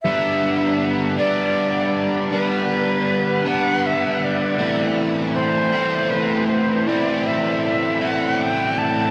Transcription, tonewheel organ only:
\new Staff \with { instrumentName = "Tonewheel organ" } { \time 6/8 \key g \mixolydian \tempo 4. = 53 << { b'2.~ | b'2. | e''2. | d''2. | } \\ { <g b d' g'>2.~ | <g b d' g'>2. | <a c' e' a'>2.~ | <a c' e' a'>2. | } >> }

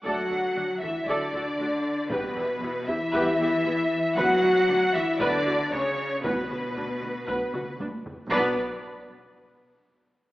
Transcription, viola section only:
\new Staff \with { instrumentName = "Viola section" } { \time 4/4 \key b \minor \tempo 4 = 116 <a' d''>8 <fis' a'>8 <d' fis'>8 <fis' a'>8 <a' d''>8 <fis' a'>8 <d' fis'>8 r8 | <g' b'>8 <e' g'>8 <b e'>8 <e' g'>8 <g' b'>8 <e' g'>8 <b e'>8 r8 | b'8 fis'8 d'8 fis'8 b'8 fis'8 d'8 r8 | b'8 fis'8 d'8 fis'8 b'8 fis'8 d'8 r8 |
<b' d''>8 r2. r8 | }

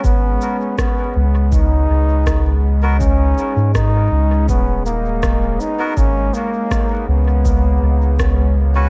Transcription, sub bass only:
\new Staff \with { instrumentName = "Sub bass" } { \clef bass \time 4/4 \key gis \minor \tempo 4 = 81 gis,,8 r4 cis,4 cis,4.~ | cis,8 r16 gis,8. cis,8 dis,,4. r8 | gis,,8 r4 cis,4 cis,4. | }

